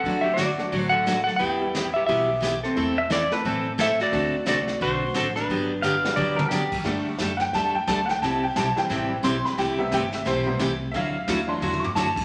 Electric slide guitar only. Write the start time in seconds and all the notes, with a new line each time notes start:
Already playing: A4 F#5
0.21 G4 E5
0.34 F#4 D5
0.81 C5
0.89 A4 F#5
1.24 A4 F#5
1.36 B4 G5
1.94 G4 E5
2.06 G4 E5
2.64 C4 A4
3.80 A4 E5
4.01 F#4 D5
4.48 F#4 D5
4.82 F#4 C5
5.36 D4 B4